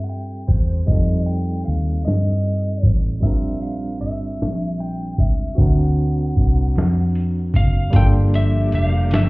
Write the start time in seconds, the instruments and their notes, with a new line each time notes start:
Already playing: fingered electric bass G2, tine electric piano G3 C4 F4 G4 A4
0.04 lead electric guitar F#5
0.09 lead electric guitar G5, closed hi-hat
0.48 fingered electric bass E2, lead electric guitar C5, kick, closed hi-hat
0.86 fingered electric bass F2, tine electric piano G3 C4 F4, lead electric guitar D#5, kick, closed hi-hat
0.90 tine electric piano D#4 A4
1.26 lead electric guitar G5, closed hi-hat
1.65 fingered electric bass D#2, lead electric guitar F5, closed hi-hat
2.05 fingered electric bass G2, lead electric guitar D#5, snare, closed hi-hat
2.45 closed hi-hat
2.83 fingered electric bass A1, kick, closed hi-hat
3.21 fingered electric bass A#1, tine electric piano G3 C4 D4, lead electric guitar E5, kick, closed hi-hat
3.25 tine electric piano F4 A#4
3.62 lead electric guitar F5, closed hi-hat
4.01 fingered electric bass G1, lead electric guitar E5, closed hi-hat
4.40 fingered electric bass A#1, snare, closed hi-hat
4.80 lead electric guitar G5, closed hi-hat
5.18 fingered electric bass C#2, lead electric guitar E5, kick, closed hi-hat
5.55 fingered electric bass D2, tine electric piano C4 D4 F#4, kick, closed hi-hat
5.59 tine electric piano A#4, lead electric guitar F#5
5.99 closed hi-hat
6.37 fingered electric bass C2, kick, closed hi-hat
6.76 fingered electric bass F2, snare, closed hi-hat
7.15 closed hi-hat
7.54 fingered electric bass F#1, lead electric guitar F5, kick, closed hi-hat
7.90 string section F3 A#3 D4 G4, tine electric piano G3 A#3 D4, kick, closed hi-hat
7.94 fingered electric bass G1, tine electric piano F4 A4, lead electric guitar G5
8.34 lead electric guitar E5, closed hi-hat
8.72 fingered electric bass F1, lead electric guitar F5, closed hi-hat
9.11 fingered electric bass G1, lead electric guitar E5, snare, closed hi-hat